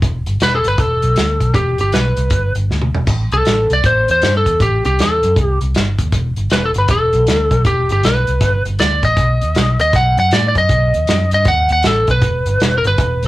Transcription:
0.02 E1, kick, closed hi-hat
0.26 G1, closed hi-hat
0.40 E1 B4, snare, closed hi-hat
0.55 G#4 A4
0.64 G1 B4, closed hi-hat
0.78 E1 A4, kick, closed hi-hat
1.02 B1, closed hi-hat
1.16 D2, snare, closed hi-hat
1.40 B1, kick, closed hi-hat
1.54 E1 G4, kick, closed hi-hat
1.78 G1 G4, closed hi-hat
1.92 B1 B4, snare, closed hi-hat
2.17 C2, closed hi-hat
2.30 G1, kick, closed hi-hat
2.55 G1, closed hi-hat
2.69 D2, snare
2.82 mid tom
2.94 E1, floor tom
3.07 A1, kick, closed hi-hat, splash
3.32 C2 A4, closed hi-hat
3.45 A1, snare, closed hi-hat
3.70 C2 D5, closed hi-hat
3.84 A1 C5, kick, closed hi-hat
4.08 E2 C5, closed hi-hat
4.22 G2, snare, closed hi-hat
4.37 A4
4.46 E2, kick, closed hi-hat
4.60 A1 G4, kick, closed hi-hat
4.85 C2 G4, closed hi-hat
4.99 E2 A4, snare, closed hi-hat
5.23 F#2, closed hi-hat
5.36 C2, kick, closed hi-hat
5.45 G4
5.61 C2, closed hi-hat
5.74 G1, snare, closed hi-hat
5.98 D#2, kick, closed hi-hat
6.12 E1, kick, closed hi-hat
6.36 G1, closed hi-hat
6.50 E1 B4, snare, closed hi-hat
6.65 A4
6.74 G1, closed hi-hat
6.78 B4
6.88 E1 A4, kick, snare, closed hi-hat
7.13 B1, closed hi-hat
7.27 D2, snare, closed hi-hat
7.51 B1, kick, closed hi-hat
7.65 E1 G4, kick, closed hi-hat
7.89 G1 G4, closed hi-hat
8.03 B1 B4, snare, closed hi-hat
8.27 C2, closed hi-hat
8.41 G1, kick, snare, closed hi-hat
8.65 G1, closed hi-hat
8.79 D2 D5, snare, closed hi-hat
9.03 A1 D#5, kick, closed hi-hat
9.17 B1, kick, closed hi-hat
9.41 D#2, closed hi-hat
9.55 B1, snare, closed hi-hat
9.79 D#2 D#5, closed hi-hat
9.93 B1 F#5, kick, snare, closed hi-hat
10.17 F#2 F#5, closed hi-hat
10.31 A2 D5, snare, closed hi-hat
10.48 D5
10.55 F#2 D#5, kick, closed hi-hat
10.69 B1, kick, closed hi-hat
10.94 D#2, closed hi-hat
11.07 F#2, snare, closed hi-hat
11.31 G2 D#5, closed hi-hat
11.45 D#2 F#5, kick, snare, closed hi-hat
11.69 D#2 F#5, closed hi-hat
11.83 A1, snare, closed hi-hat
11.87 A4
12.07 B1 B4, kick, closed hi-hat
12.22 E1, kick, closed hi-hat
12.46 G1, closed hi-hat
12.60 E1, snare, closed hi-hat
12.78 A#4
12.84 G1 B4, closed hi-hat
12.98 E1, kick, closed hi-hat
13.23 B1, closed hi-hat

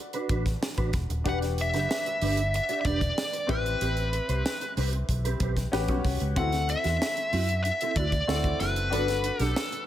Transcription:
Already playing: D4 F#4 A4 B4
0.13 D4 F#4 B4, closed hi-hat
0.29 A1 D4 F#4 B4, kick, closed hi-hat
0.45 muted clean electric guitar stroke, kick, snare, closed hi-hat
0.61 muted clean electric guitar stroke, snare
0.77 A1 D4 F#4 B4, kick, closed hi-hat
0.93 E1, muted clean electric guitar stroke, kick, snare, closed hi-hat
1.10 D#1, muted clean electric guitar stroke, closed hi-hat
1.24 E1 D4 F#4 G4 B4, kick, closed hi-hat
1.29 F#5
1.42 muted clean electric guitar stroke, snare, closed hi-hat
1.58 E5, muted clean electric guitar stroke, closed hi-hat
1.74 F#1 D4 G4 B4, snare, closed hi-hat
1.90 muted clean electric guitar stroke, snare
2.06 muted clean electric guitar stroke, closed hi-hat
2.22 G1 D4 G4 B4, open hi-hat
2.37 muted clean electric guitar stroke, closed hi-hat
2.54 E5, muted clean electric guitar stroke, closed hi-hat
2.69 D4 G4 D5, closed hi-hat
2.81 E5
2.85 E1 D4 G4 B4 D5, kick, closed hi-hat
3.01 muted clean electric guitar stroke, kick, closed hi-hat
3.18 snare
3.33 muted clean electric guitar stroke, closed hi-hat
3.47 A1 C4 E4 G4 B4, kick, closed hi-hat
3.65 muted clean electric guitar stroke, closed hi-hat
3.81 A1 C4 G4 B4, closed hi-hat
3.97 muted clean electric guitar stroke, closed hi-hat
4.12 muted clean electric guitar stroke, closed hi-hat
4.28 C2 C4 G4 C5, closed hi-hat
4.45 muted clean electric guitar stroke, snare
4.61 muted clean electric guitar stroke, closed hi-hat
4.77 C2 C4 G4 B4, open hi-hat
4.93 muted clean electric guitar stroke, closed hi-hat
5.09 B1, muted clean electric guitar stroke, kick, closed hi-hat
5.25 C4 G4 B4, closed hi-hat
5.40 B1 C4 G4 B4, kick, closed hi-hat
5.57 muted clean electric guitar stroke, kick, snare, closed hi-hat
5.72 A1 C#4 F#4 G4 B4, muted clean electric guitar stroke, snare
5.88 B1 G3 C#4 F#4, kick, closed hi-hat
6.05 C2, muted clean electric guitar stroke, kick, snare, open hi-hat
6.20 C#2, muted clean electric guitar stroke, closed hi-hat
6.36 D2 C4 E4 F#4 A4 F#5, kick, closed hi-hat
6.52 muted clean electric guitar stroke, snare, closed hi-hat
6.69 E5, muted clean electric guitar stroke, closed hi-hat
6.84 E2 C4 E4 F#4, snare, closed hi-hat
7.01 muted clean electric guitar stroke, snare
7.17 muted clean electric guitar stroke, closed hi-hat
7.32 F#2 C4 E4 F#4, open hi-hat
7.49 muted clean electric guitar stroke, closed hi-hat
7.64 E5, muted clean electric guitar stroke, closed hi-hat
7.81 C4 E4 A4, closed hi-hat
7.96 D2 C4 E4 F#4 D5, kick, closed hi-hat
8.12 muted clean electric guitar stroke, kick, closed hi-hat
8.27 D2 C4 E4 F#4 A4, snare
8.44 muted clean electric guitar stroke, kick, closed hi-hat
8.60 F#1 C4 E4 F#4 B4, snare, closed hi-hat
8.76 muted clean electric guitar stroke, closed hi-hat
8.90 G1 B3 D4 F#4 A4 B4, closed hi-hat
9.08 muted clean electric guitar stroke, snare, closed hi-hat
9.24 muted clean electric guitar stroke, closed hi-hat
9.39 B1 B3 D4 G4, snare, closed hi-hat
9.44 A4
9.56 muted clean electric guitar stroke, snare
9.72 muted clean electric guitar stroke, closed hi-hat

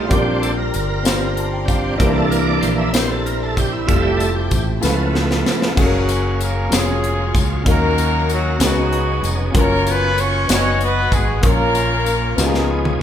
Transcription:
Already playing: A2 C4 D#4 F4 A4 C5 C6
0.08 A#1 A#2 G3 C4 D4 F4 G4 A#4 D5 G5 A#5, kick, closed hi-hat
0.42 A4, closed hi-hat, tambourine
0.57 A#4
0.74 G1, closed hi-hat, tambourine
1.03 C4 D4 F4 G4, snare, closed hi-hat, tambourine
1.07 C5
1.37 A5, closed hi-hat
1.53 G5
1.65 G3 C4 D4 F5, kick, closed hi-hat
1.70 tambourine
1.97 C2 C3 E3 A#3 C4 D4 E4 G4 A#4 E5, kick, closed hi-hat
2.16 A4
2.31 A#4, closed hi-hat, tambourine
2.47 D5
2.61 A#1 C5, closed hi-hat, tambourine
2.78 E5
2.92 C4 D4 E4 G4 A#4 C5, snare, closed hi-hat, tambourine
3.02 C5
3.10 A4
3.26 A#4, closed hi-hat
3.43 A4
3.57 G4, kick, closed hi-hat, tambourine
3.72 E4
3.86 F1 G3 A3 C4 E4 F4 G4 A4 C5 E5 G5 A5, kick, closed hi-hat
4.02 G4
4.17 A4, closed hi-hat, tambourine
4.35 G4
4.51 A1, kick, closed hi-hat, tambourine
4.80 C#2 C#3 F3 A3 B3 C#4 E4 F4 A4 B4 C#5 E5 A5 B5, snare, tambourine
5.15 snare
5.31 snare
5.46 snare, tambourine
5.62 snare
5.75 F#1 F#3 A3 A#3 C#4 F#4 G#4 A4 F5, kick, crash
5.85 A#3 A#4
6.09 closed hi-hat, tambourine
6.41 A#3 A#4, closed hi-hat, tambourine
6.69 F1 F#3 C#4 F4 G#4, closed hi-hat, tambourine
6.73 G#3 C#4 F4 G#4 C#5, snare
7.04 closed hi-hat
7.35 C#2, kick, closed hi-hat, tambourine
7.39 G#3 G#4
7.64 D#2 D#3 F#3 C#4 D#4 F#4 A#4 F5, kick, closed hi-hat
7.68 A#3 C#4 F#4 A#4
7.98 closed hi-hat, tambourine
8.29 F#3 F#4, closed hi-hat, tambourine
8.58 C#2 C#3 F#3 B3 C#4 D#4 F#4 G#4, snare, closed hi-hat, tambourine
8.63 F#3 B3 D#4 F#4 A#4
8.69 B4
8.93 closed hi-hat
9.23 F1, closed hi-hat, tambourine
9.52 F#1 F#3 C#4 F4 G#4 A#4 B4, kick, closed hi-hat
9.57 A#3 C#4 F4 A#4
9.62 C#5
9.87 B3 B4, closed hi-hat, tambourine
10.18 C#4 C#5, closed hi-hat, tambourine
10.47 F#1 B3 D#4 F#4 B4 D5, snare, closed hi-hat, tambourine
10.51 B3 C#4 D#4 F4 C#5
10.57 F#4 D#5
10.81 B3 B4, closed hi-hat
11.12 G#1 G#3 G#4, kick, closed hi-hat, tambourine
11.41 A#1 A#2 A#3 C#4 F4 A#4 C#5, kick, closed hi-hat
11.45 A#3 C#4 A#4
11.75 closed hi-hat, tambourine
12.06 closed hi-hat, tambourine
12.36 C#2 C#3 F3 B3 C#4 D#4 F4 G#4, snare, tambourine
12.40 G4
12.46 G#4
12.54 snare
12.69 B5
12.85 mid tom

